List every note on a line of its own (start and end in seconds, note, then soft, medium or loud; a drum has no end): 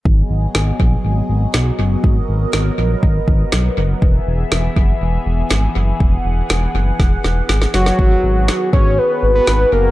0.05 0.23 G#1 loud
0.05 3.98 F#3 medium
0.05 7.95 B3 medium
0.05 2.02 G#4 medium
0.05 3.98 D#5 medium
0.05 kick medium
0.30 0.47 G#1 medium
0.55 0.72 G#1 loud
0.55 snare loud
0.80 0.97 A#1 medium
0.80 kick medium
1.05 1.22 G#1 medium
1.29 1.47 G#1 loud
1.54 1.72 B1 medium
1.54 snare loud
1.79 1.96 F#1 medium
2.04 2.21 G#1 loud
2.04 4.00 A#4 medium
2.04 kick loud
2.29 2.46 G#1 medium
2.53 2.71 G#1 loud
2.53 snare loud
2.78 2.96 A#1 medium
3.03 3.20 G#1 loud
3.03 kick medium
3.28 3.45 G#1 medium
3.28 kick medium
3.52 3.70 B1 medium
3.52 snare loud
3.77 3.95 F#1 medium
4.02 4.20 E1 loud
4.02 7.95 E3 medium
4.02 7.95 G#4 medium
4.02 5.98 E5 medium
4.02 kick loud
4.27 4.44 E1 loud
4.52 4.69 E1 loud
4.52 snare loud
4.76 4.94 F#1 medium
4.76 kick medium
5.01 5.19 E1 loud
5.26 5.43 E1 medium
5.51 5.68 G#1 medium
5.51 snare loud
5.76 5.93 F#1 medium
6.00 6.18 E1 loud
6.00 7.97 F#5 medium
6.00 kick loud
6.25 6.42 E1 loud
6.50 6.67 E1 loud
6.50 snare loud
6.75 6.92 F#1 medium
6.99 7.17 E1 medium
6.99 kick medium
6.99 snare soft
7.24 7.42 E1 medium
7.24 snare medium
7.49 7.67 G#1 medium
7.49 snare medium
7.62 snare medium
7.74 7.91 F#1 medium
7.74 8.69 F#4 loud
7.74 snare medium
7.86 snare medium
7.99 8.16 G#1 loud
7.99 9.91 D#3 medium
7.99 9.91 B3 medium
7.99 9.91 F#4 medium
7.99 9.91 G#4 medium
7.99 kick loud
8.24 8.50 G#1 loud
8.48 snare loud
8.73 8.99 G#1 medium
8.73 9.00 C#5 loud
8.73 kick medium
8.98 9.35 B4 loud
9.23 9.40 G#1 loud
9.35 9.70 B4 loud
9.47 9.65 G#1 loud
9.47 snare loud
9.72 9.90 F#1 loud
9.72 9.91 A#4 loud